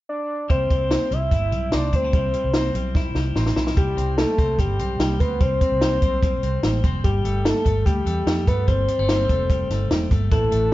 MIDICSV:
0, 0, Header, 1, 5, 480
1, 0, Start_track
1, 0, Key_signature, 0, "major"
1, 0, Tempo, 408998
1, 588, Time_signature, 4, 2, 24, 8
1, 12603, End_track
2, 0, Start_track
2, 0, Title_t, "Soft synth lead"
2, 0, Program_c, 0, 80
2, 107, Note_on_c, 0, 74, 87
2, 554, Note_off_c, 0, 74, 0
2, 590, Note_on_c, 0, 72, 86
2, 812, Note_off_c, 0, 72, 0
2, 824, Note_on_c, 0, 72, 91
2, 1321, Note_on_c, 0, 76, 113
2, 1338, Note_off_c, 0, 72, 0
2, 2040, Note_on_c, 0, 74, 97
2, 2058, Note_off_c, 0, 76, 0
2, 2292, Note_on_c, 0, 72, 91
2, 2310, Note_off_c, 0, 74, 0
2, 3720, Note_off_c, 0, 72, 0
2, 4427, Note_on_c, 0, 67, 95
2, 4874, Note_off_c, 0, 67, 0
2, 4898, Note_on_c, 0, 69, 98
2, 5390, Note_on_c, 0, 67, 93
2, 5408, Note_off_c, 0, 69, 0
2, 6100, Note_on_c, 0, 71, 100
2, 6118, Note_off_c, 0, 67, 0
2, 6348, Note_on_c, 0, 72, 124
2, 6365, Note_off_c, 0, 71, 0
2, 8027, Note_off_c, 0, 72, 0
2, 8260, Note_on_c, 0, 67, 92
2, 8745, Note_on_c, 0, 69, 105
2, 8763, Note_off_c, 0, 67, 0
2, 9214, Note_off_c, 0, 69, 0
2, 9221, Note_on_c, 0, 67, 92
2, 9947, Note_on_c, 0, 71, 97
2, 9965, Note_off_c, 0, 67, 0
2, 10179, Note_on_c, 0, 72, 107
2, 10197, Note_off_c, 0, 71, 0
2, 11861, Note_off_c, 0, 72, 0
2, 12109, Note_on_c, 0, 69, 98
2, 12603, Note_off_c, 0, 69, 0
2, 12603, End_track
3, 0, Start_track
3, 0, Title_t, "Clean electric guitar"
3, 0, Program_c, 1, 27
3, 583, Note_on_c, 1, 55, 62
3, 592, Note_on_c, 1, 64, 56
3, 825, Note_off_c, 1, 55, 0
3, 830, Note_on_c, 1, 55, 53
3, 1063, Note_on_c, 1, 60, 50
3, 1303, Note_off_c, 1, 55, 0
3, 1308, Note_on_c, 1, 55, 50
3, 1535, Note_off_c, 1, 64, 0
3, 1540, Note_on_c, 1, 64, 58
3, 1780, Note_off_c, 1, 55, 0
3, 1785, Note_on_c, 1, 55, 43
3, 2023, Note_off_c, 1, 60, 0
3, 2028, Note_on_c, 1, 60, 55
3, 2265, Note_off_c, 1, 64, 0
3, 2270, Note_on_c, 1, 62, 57
3, 2399, Note_off_c, 1, 62, 0
3, 2399, Note_on_c, 1, 64, 46
3, 2509, Note_off_c, 1, 55, 0
3, 2513, Note_off_c, 1, 64, 0
3, 2514, Note_on_c, 1, 55, 66
3, 2526, Note_on_c, 1, 64, 54
3, 2748, Note_off_c, 1, 55, 0
3, 2753, Note_on_c, 1, 55, 52
3, 2999, Note_off_c, 1, 60, 0
3, 3003, Note_on_c, 1, 60, 57
3, 3235, Note_off_c, 1, 55, 0
3, 3240, Note_on_c, 1, 55, 53
3, 3474, Note_off_c, 1, 64, 0
3, 3479, Note_on_c, 1, 64, 63
3, 3705, Note_off_c, 1, 55, 0
3, 3710, Note_on_c, 1, 55, 50
3, 3942, Note_off_c, 1, 60, 0
3, 3947, Note_on_c, 1, 60, 58
3, 4178, Note_off_c, 1, 64, 0
3, 4182, Note_on_c, 1, 64, 58
3, 4418, Note_off_c, 1, 55, 0
3, 4422, Note_on_c, 1, 55, 62
3, 4655, Note_off_c, 1, 60, 0
3, 4660, Note_on_c, 1, 60, 53
3, 4904, Note_off_c, 1, 55, 0
3, 4909, Note_on_c, 1, 55, 54
3, 5134, Note_off_c, 1, 60, 0
3, 5148, Note_on_c, 1, 60, 52
3, 5383, Note_off_c, 1, 55, 0
3, 5388, Note_on_c, 1, 55, 54
3, 5615, Note_off_c, 1, 60, 0
3, 5629, Note_on_c, 1, 60, 50
3, 5868, Note_off_c, 1, 55, 0
3, 5872, Note_on_c, 1, 55, 61
3, 6098, Note_off_c, 1, 60, 0
3, 6112, Note_on_c, 1, 60, 53
3, 6346, Note_off_c, 1, 55, 0
3, 6350, Note_on_c, 1, 55, 68
3, 6582, Note_off_c, 1, 60, 0
3, 6596, Note_on_c, 1, 60, 52
3, 6823, Note_off_c, 1, 55, 0
3, 6828, Note_on_c, 1, 55, 60
3, 7056, Note_off_c, 1, 60, 0
3, 7070, Note_on_c, 1, 60, 52
3, 7299, Note_off_c, 1, 55, 0
3, 7304, Note_on_c, 1, 55, 55
3, 7540, Note_off_c, 1, 60, 0
3, 7554, Note_on_c, 1, 60, 48
3, 7786, Note_off_c, 1, 55, 0
3, 7791, Note_on_c, 1, 55, 60
3, 8023, Note_off_c, 1, 60, 0
3, 8037, Note_on_c, 1, 60, 57
3, 8268, Note_off_c, 1, 55, 0
3, 8273, Note_on_c, 1, 55, 73
3, 8290, Note_off_c, 1, 64, 0
3, 8320, Note_off_c, 1, 60, 0
3, 8509, Note_on_c, 1, 57, 55
3, 8729, Note_off_c, 1, 55, 0
3, 8743, Note_on_c, 1, 55, 58
3, 8972, Note_off_c, 1, 57, 0
3, 8977, Note_on_c, 1, 57, 52
3, 9209, Note_off_c, 1, 55, 0
3, 9223, Note_on_c, 1, 55, 58
3, 9459, Note_off_c, 1, 57, 0
3, 9463, Note_on_c, 1, 57, 54
3, 9689, Note_off_c, 1, 55, 0
3, 9703, Note_on_c, 1, 55, 54
3, 9948, Note_off_c, 1, 57, 0
3, 9952, Note_on_c, 1, 57, 56
3, 10171, Note_off_c, 1, 55, 0
3, 10185, Note_on_c, 1, 55, 68
3, 10418, Note_off_c, 1, 55, 0
3, 10428, Note_off_c, 1, 57, 0
3, 10432, Note_on_c, 1, 55, 53
3, 10553, Note_off_c, 1, 55, 0
3, 10553, Note_on_c, 1, 57, 46
3, 10673, Note_on_c, 1, 55, 56
3, 10905, Note_off_c, 1, 57, 0
3, 10919, Note_on_c, 1, 57, 50
3, 11143, Note_off_c, 1, 55, 0
3, 11157, Note_on_c, 1, 55, 53
3, 11392, Note_off_c, 1, 57, 0
3, 11397, Note_on_c, 1, 57, 49
3, 11626, Note_off_c, 1, 55, 0
3, 11640, Note_on_c, 1, 55, 56
3, 11870, Note_off_c, 1, 57, 0
3, 11875, Note_on_c, 1, 57, 52
3, 12104, Note_off_c, 1, 55, 0
3, 12108, Note_on_c, 1, 52, 71
3, 12337, Note_off_c, 1, 57, 0
3, 12342, Note_on_c, 1, 57, 50
3, 12569, Note_off_c, 1, 52, 0
3, 12603, Note_off_c, 1, 57, 0
3, 12603, End_track
4, 0, Start_track
4, 0, Title_t, "Fingered electric bass"
4, 0, Program_c, 2, 33
4, 587, Note_on_c, 2, 36, 74
4, 791, Note_off_c, 2, 36, 0
4, 826, Note_on_c, 2, 36, 76
4, 1133, Note_off_c, 2, 36, 0
4, 1302, Note_on_c, 2, 36, 79
4, 1509, Note_off_c, 2, 36, 0
4, 1546, Note_on_c, 2, 31, 74
4, 1751, Note_off_c, 2, 31, 0
4, 1783, Note_on_c, 2, 35, 79
4, 1989, Note_off_c, 2, 35, 0
4, 2029, Note_on_c, 2, 36, 81
4, 2233, Note_off_c, 2, 36, 0
4, 2261, Note_on_c, 2, 38, 76
4, 2468, Note_off_c, 2, 38, 0
4, 2504, Note_on_c, 2, 36, 84
4, 2710, Note_off_c, 2, 36, 0
4, 2866, Note_on_c, 2, 36, 82
4, 3173, Note_off_c, 2, 36, 0
4, 3223, Note_on_c, 2, 35, 77
4, 3633, Note_off_c, 2, 35, 0
4, 3692, Note_on_c, 2, 36, 78
4, 3903, Note_off_c, 2, 36, 0
4, 3937, Note_on_c, 2, 33, 81
4, 4146, Note_off_c, 2, 33, 0
4, 4176, Note_on_c, 2, 35, 78
4, 4385, Note_off_c, 2, 35, 0
4, 4424, Note_on_c, 2, 36, 84
4, 4629, Note_off_c, 2, 36, 0
4, 4661, Note_on_c, 2, 36, 76
4, 4970, Note_off_c, 2, 36, 0
4, 5146, Note_on_c, 2, 36, 83
4, 5381, Note_on_c, 2, 31, 73
4, 5399, Note_off_c, 2, 36, 0
4, 5588, Note_off_c, 2, 31, 0
4, 5624, Note_on_c, 2, 35, 69
4, 5829, Note_off_c, 2, 35, 0
4, 5862, Note_on_c, 2, 36, 83
4, 6068, Note_off_c, 2, 36, 0
4, 6105, Note_on_c, 2, 38, 79
4, 6310, Note_off_c, 2, 38, 0
4, 6346, Note_on_c, 2, 36, 91
4, 6551, Note_off_c, 2, 36, 0
4, 6710, Note_on_c, 2, 36, 83
4, 7015, Note_off_c, 2, 36, 0
4, 7066, Note_on_c, 2, 35, 83
4, 7474, Note_off_c, 2, 35, 0
4, 7545, Note_on_c, 2, 36, 77
4, 7750, Note_off_c, 2, 36, 0
4, 7779, Note_on_c, 2, 33, 82
4, 7986, Note_off_c, 2, 33, 0
4, 8025, Note_on_c, 2, 29, 77
4, 8230, Note_off_c, 2, 29, 0
4, 8269, Note_on_c, 2, 31, 91
4, 8472, Note_off_c, 2, 31, 0
4, 8499, Note_on_c, 2, 31, 83
4, 8809, Note_off_c, 2, 31, 0
4, 8985, Note_on_c, 2, 31, 85
4, 9190, Note_off_c, 2, 31, 0
4, 9228, Note_on_c, 2, 38, 84
4, 9432, Note_off_c, 2, 38, 0
4, 9459, Note_on_c, 2, 40, 84
4, 9666, Note_off_c, 2, 40, 0
4, 9696, Note_on_c, 2, 41, 82
4, 9945, Note_off_c, 2, 41, 0
4, 9945, Note_on_c, 2, 43, 74
4, 10150, Note_off_c, 2, 43, 0
4, 10187, Note_on_c, 2, 31, 83
4, 10390, Note_off_c, 2, 31, 0
4, 10549, Note_on_c, 2, 31, 85
4, 10853, Note_off_c, 2, 31, 0
4, 10906, Note_on_c, 2, 29, 78
4, 11314, Note_off_c, 2, 29, 0
4, 11383, Note_on_c, 2, 31, 72
4, 11588, Note_off_c, 2, 31, 0
4, 11625, Note_on_c, 2, 28, 72
4, 11829, Note_off_c, 2, 28, 0
4, 11865, Note_on_c, 2, 31, 71
4, 12069, Note_off_c, 2, 31, 0
4, 12107, Note_on_c, 2, 33, 90
4, 12310, Note_off_c, 2, 33, 0
4, 12347, Note_on_c, 2, 33, 73
4, 12603, Note_off_c, 2, 33, 0
4, 12603, End_track
5, 0, Start_track
5, 0, Title_t, "Drums"
5, 587, Note_on_c, 9, 36, 91
5, 589, Note_on_c, 9, 42, 64
5, 704, Note_off_c, 9, 36, 0
5, 706, Note_off_c, 9, 42, 0
5, 827, Note_on_c, 9, 36, 78
5, 829, Note_on_c, 9, 42, 60
5, 945, Note_off_c, 9, 36, 0
5, 946, Note_off_c, 9, 42, 0
5, 1066, Note_on_c, 9, 38, 101
5, 1069, Note_on_c, 9, 42, 94
5, 1184, Note_off_c, 9, 38, 0
5, 1187, Note_off_c, 9, 42, 0
5, 1309, Note_on_c, 9, 42, 61
5, 1427, Note_off_c, 9, 42, 0
5, 1543, Note_on_c, 9, 36, 86
5, 1547, Note_on_c, 9, 42, 81
5, 1661, Note_off_c, 9, 36, 0
5, 1664, Note_off_c, 9, 42, 0
5, 1784, Note_on_c, 9, 42, 55
5, 1902, Note_off_c, 9, 42, 0
5, 2016, Note_on_c, 9, 42, 83
5, 2017, Note_on_c, 9, 38, 88
5, 2134, Note_off_c, 9, 42, 0
5, 2135, Note_off_c, 9, 38, 0
5, 2263, Note_on_c, 9, 42, 63
5, 2264, Note_on_c, 9, 36, 75
5, 2380, Note_off_c, 9, 42, 0
5, 2381, Note_off_c, 9, 36, 0
5, 2500, Note_on_c, 9, 42, 73
5, 2503, Note_on_c, 9, 36, 97
5, 2617, Note_off_c, 9, 42, 0
5, 2621, Note_off_c, 9, 36, 0
5, 2740, Note_on_c, 9, 42, 62
5, 2857, Note_off_c, 9, 42, 0
5, 2976, Note_on_c, 9, 38, 106
5, 2979, Note_on_c, 9, 42, 93
5, 3093, Note_off_c, 9, 38, 0
5, 3096, Note_off_c, 9, 42, 0
5, 3225, Note_on_c, 9, 42, 60
5, 3343, Note_off_c, 9, 42, 0
5, 3461, Note_on_c, 9, 36, 82
5, 3462, Note_on_c, 9, 38, 42
5, 3579, Note_off_c, 9, 36, 0
5, 3579, Note_off_c, 9, 38, 0
5, 3696, Note_on_c, 9, 38, 56
5, 3814, Note_off_c, 9, 38, 0
5, 3940, Note_on_c, 9, 38, 65
5, 4058, Note_off_c, 9, 38, 0
5, 4063, Note_on_c, 9, 38, 66
5, 4180, Note_off_c, 9, 38, 0
5, 4182, Note_on_c, 9, 38, 74
5, 4300, Note_off_c, 9, 38, 0
5, 4306, Note_on_c, 9, 38, 70
5, 4423, Note_off_c, 9, 38, 0
5, 4424, Note_on_c, 9, 42, 75
5, 4425, Note_on_c, 9, 36, 89
5, 4541, Note_off_c, 9, 42, 0
5, 4542, Note_off_c, 9, 36, 0
5, 4669, Note_on_c, 9, 42, 66
5, 4787, Note_off_c, 9, 42, 0
5, 4904, Note_on_c, 9, 38, 98
5, 4907, Note_on_c, 9, 42, 90
5, 5022, Note_off_c, 9, 38, 0
5, 5025, Note_off_c, 9, 42, 0
5, 5145, Note_on_c, 9, 36, 79
5, 5148, Note_on_c, 9, 42, 59
5, 5263, Note_off_c, 9, 36, 0
5, 5266, Note_off_c, 9, 42, 0
5, 5384, Note_on_c, 9, 36, 85
5, 5389, Note_on_c, 9, 42, 83
5, 5501, Note_off_c, 9, 36, 0
5, 5506, Note_off_c, 9, 42, 0
5, 5625, Note_on_c, 9, 42, 63
5, 5742, Note_off_c, 9, 42, 0
5, 5865, Note_on_c, 9, 42, 84
5, 5866, Note_on_c, 9, 38, 90
5, 5982, Note_off_c, 9, 42, 0
5, 5983, Note_off_c, 9, 38, 0
5, 6106, Note_on_c, 9, 36, 83
5, 6112, Note_on_c, 9, 42, 67
5, 6224, Note_off_c, 9, 36, 0
5, 6229, Note_off_c, 9, 42, 0
5, 6342, Note_on_c, 9, 42, 81
5, 6345, Note_on_c, 9, 36, 97
5, 6460, Note_off_c, 9, 42, 0
5, 6463, Note_off_c, 9, 36, 0
5, 6585, Note_on_c, 9, 42, 67
5, 6586, Note_on_c, 9, 36, 85
5, 6702, Note_off_c, 9, 42, 0
5, 6704, Note_off_c, 9, 36, 0
5, 6824, Note_on_c, 9, 38, 99
5, 6826, Note_on_c, 9, 42, 96
5, 6941, Note_off_c, 9, 38, 0
5, 6944, Note_off_c, 9, 42, 0
5, 7063, Note_on_c, 9, 42, 62
5, 7066, Note_on_c, 9, 36, 76
5, 7180, Note_off_c, 9, 42, 0
5, 7184, Note_off_c, 9, 36, 0
5, 7306, Note_on_c, 9, 36, 84
5, 7311, Note_on_c, 9, 42, 83
5, 7423, Note_off_c, 9, 36, 0
5, 7428, Note_off_c, 9, 42, 0
5, 7545, Note_on_c, 9, 42, 62
5, 7662, Note_off_c, 9, 42, 0
5, 7783, Note_on_c, 9, 42, 88
5, 7784, Note_on_c, 9, 38, 85
5, 7900, Note_off_c, 9, 42, 0
5, 7901, Note_off_c, 9, 38, 0
5, 8026, Note_on_c, 9, 36, 86
5, 8030, Note_on_c, 9, 42, 75
5, 8144, Note_off_c, 9, 36, 0
5, 8148, Note_off_c, 9, 42, 0
5, 8266, Note_on_c, 9, 36, 94
5, 8267, Note_on_c, 9, 42, 75
5, 8384, Note_off_c, 9, 36, 0
5, 8384, Note_off_c, 9, 42, 0
5, 8507, Note_on_c, 9, 42, 62
5, 8624, Note_off_c, 9, 42, 0
5, 8747, Note_on_c, 9, 38, 105
5, 8750, Note_on_c, 9, 42, 94
5, 8864, Note_off_c, 9, 38, 0
5, 8867, Note_off_c, 9, 42, 0
5, 8987, Note_on_c, 9, 36, 76
5, 8988, Note_on_c, 9, 42, 60
5, 9104, Note_off_c, 9, 36, 0
5, 9105, Note_off_c, 9, 42, 0
5, 9225, Note_on_c, 9, 36, 83
5, 9233, Note_on_c, 9, 42, 85
5, 9343, Note_off_c, 9, 36, 0
5, 9350, Note_off_c, 9, 42, 0
5, 9466, Note_on_c, 9, 42, 61
5, 9583, Note_off_c, 9, 42, 0
5, 9705, Note_on_c, 9, 42, 80
5, 9706, Note_on_c, 9, 38, 90
5, 9822, Note_off_c, 9, 42, 0
5, 9824, Note_off_c, 9, 38, 0
5, 9946, Note_on_c, 9, 36, 86
5, 9949, Note_on_c, 9, 42, 67
5, 10063, Note_off_c, 9, 36, 0
5, 10067, Note_off_c, 9, 42, 0
5, 10185, Note_on_c, 9, 36, 93
5, 10185, Note_on_c, 9, 42, 81
5, 10303, Note_off_c, 9, 36, 0
5, 10303, Note_off_c, 9, 42, 0
5, 10424, Note_on_c, 9, 42, 62
5, 10542, Note_off_c, 9, 42, 0
5, 10665, Note_on_c, 9, 38, 100
5, 10668, Note_on_c, 9, 42, 93
5, 10782, Note_off_c, 9, 38, 0
5, 10785, Note_off_c, 9, 42, 0
5, 10907, Note_on_c, 9, 36, 80
5, 10910, Note_on_c, 9, 42, 59
5, 11025, Note_off_c, 9, 36, 0
5, 11027, Note_off_c, 9, 42, 0
5, 11145, Note_on_c, 9, 36, 83
5, 11150, Note_on_c, 9, 42, 87
5, 11263, Note_off_c, 9, 36, 0
5, 11268, Note_off_c, 9, 42, 0
5, 11389, Note_on_c, 9, 42, 65
5, 11392, Note_on_c, 9, 38, 29
5, 11506, Note_off_c, 9, 42, 0
5, 11509, Note_off_c, 9, 38, 0
5, 11627, Note_on_c, 9, 42, 83
5, 11628, Note_on_c, 9, 38, 94
5, 11745, Note_off_c, 9, 42, 0
5, 11746, Note_off_c, 9, 38, 0
5, 11866, Note_on_c, 9, 36, 85
5, 11871, Note_on_c, 9, 42, 71
5, 11984, Note_off_c, 9, 36, 0
5, 11988, Note_off_c, 9, 42, 0
5, 12106, Note_on_c, 9, 36, 99
5, 12106, Note_on_c, 9, 42, 77
5, 12224, Note_off_c, 9, 36, 0
5, 12224, Note_off_c, 9, 42, 0
5, 12344, Note_on_c, 9, 42, 66
5, 12462, Note_off_c, 9, 42, 0
5, 12603, End_track
0, 0, End_of_file